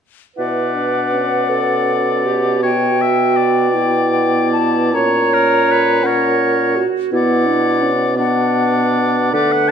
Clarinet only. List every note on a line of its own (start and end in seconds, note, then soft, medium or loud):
0.36 1.51 B4 medium
1.49 2.27 A4 medium
2.25 2.64 G4 medium
2.62 3.75 F#4 medium
3.74 4.95 E4 medium
4.96 6.06 C#5 medium
6.05 6.78 A#4 medium
6.76 7.12 F#4 medium
7.12 7.90 E4 medium
8.17 9.35 D4 medium
9.33 9.71 B4 medium